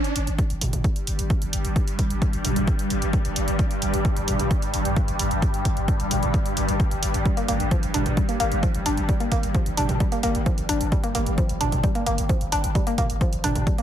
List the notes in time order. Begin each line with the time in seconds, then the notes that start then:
Already playing: G2 G3
0.04 closed hi-hat
0.16 G1, open hi-hat
0.27 G1, closed hi-hat
0.39 kick, closed hi-hat
0.50 G1, closed hi-hat
0.61 G1, mid tom, open hi-hat
0.73 G1, closed hi-hat, mid tom
0.84 kick, closed hi-hat
0.96 closed hi-hat
1.07 G1, open hi-hat
1.19 G1, closed hi-hat
1.30 kick, closed hi-hat
1.42 G1, closed hi-hat
1.53 G1, open hi-hat
1.65 G1, closed hi-hat
1.76 kick, closed hi-hat
1.88 closed hi-hat
1.99 G1, kick, open hi-hat
2.10 G1, closed hi-hat
2.22 kick, closed hi-hat
2.33 G1, closed hi-hat
2.45 G1, mid tom, open hi-hat
2.56 G1, closed hi-hat, mid tom
2.68 kick, closed hi-hat
2.79 closed hi-hat
2.90 G1, open hi-hat
3.02 G1, closed hi-hat
3.13 kick, closed hi-hat
3.25 G1, closed hi-hat
3.36 G1, open hi-hat
3.48 G1, closed hi-hat
3.59 kick, closed hi-hat
3.71 closed hi-hat
3.82 G1, open hi-hat
3.94 G1, closed hi-hat
4.05 kick, closed hi-hat
4.17 G1, closed hi-hat
4.28 G1, mid tom, open hi-hat
4.39 G1, closed hi-hat, mid tom
4.51 kick, closed hi-hat
4.62 closed hi-hat
4.74 G1, open hi-hat
4.85 G1, closed hi-hat
4.96 kick, closed hi-hat
5.08 G1, closed hi-hat
5.19 G1, open hi-hat
5.31 G1, closed hi-hat
5.42 kick, closed hi-hat
5.54 closed hi-hat
5.65 G1, kick, open hi-hat
5.77 G1, closed hi-hat
5.88 kick, closed hi-hat
6.00 G1, closed hi-hat
6.11 G1, mid tom, open hi-hat
6.23 G1, closed hi-hat, mid tom
6.34 kick, closed hi-hat
6.46 closed hi-hat
6.57 G1, open hi-hat
6.68 G1, closed hi-hat
6.80 kick, closed hi-hat
6.91 G1, closed hi-hat
7.03 G1, open hi-hat
7.14 G1, closed hi-hat
7.26 G3, kick, closed hi-hat
7.37 A#3, closed hi-hat
7.48 G1 A#3, open hi-hat
7.60 G1, closed hi-hat
7.71 F3, kick, closed hi-hat
7.83 G1, closed hi-hat
7.94 G1 D4, mid tom, open hi-hat
8.06 G1, closed hi-hat, mid tom
8.17 G3, kick, closed hi-hat
8.29 A#3, closed hi-hat
8.40 G1 A#3, open hi-hat
8.52 G1, closed hi-hat
8.63 F3, kick, closed hi-hat
8.75 G1, closed hi-hat
8.86 G1 D4, open hi-hat
8.97 G1, closed hi-hat
9.09 G3, kick, closed hi-hat
9.20 A#3, closed hi-hat
9.32 G1 A#3, kick, open hi-hat
9.43 G1, closed hi-hat
9.55 F3, kick, closed hi-hat
9.66 G1, closed hi-hat
9.77 G1 D4, mid tom, open hi-hat
9.89 G1, closed hi-hat, mid tom
10.00 G3, kick, closed hi-hat
10.12 A#3, closed hi-hat
10.23 G1 A#3, open hi-hat
10.35 G1, closed hi-hat
10.46 F3, kick, closed hi-hat
10.58 G1, closed hi-hat
10.69 G1 D4, open hi-hat
10.81 G1, closed hi-hat
10.92 G3, kick, closed hi-hat
11.04 A#3, closed hi-hat
11.15 G1 A#3, open hi-hat
11.27 G1, closed hi-hat
11.38 F3, kick, closed hi-hat
11.49 G1, closed hi-hat
11.61 G1 D4, mid tom, open hi-hat
11.72 G1, closed hi-hat, mid tom
11.84 G3, kick, closed hi-hat
11.95 A#3, closed hi-hat
12.06 G1 A#3, open hi-hat
12.18 G1, closed hi-hat
12.29 F3, kick, closed hi-hat
12.41 G1, closed hi-hat
12.52 G1 D4, open hi-hat
12.64 G1, closed hi-hat
12.75 G3, kick, closed hi-hat
12.87 A#3, closed hi-hat
12.98 G1 A#3, kick, mid tom, open hi-hat
13.10 G1, closed hi-hat
13.21 F3, kick, closed hi-hat
13.33 G1, closed hi-hat
13.44 G1 D4, mid tom, open hi-hat
13.55 G1, closed hi-hat, mid tom
13.67 G3, kick, closed hi-hat
13.78 A#3, closed hi-hat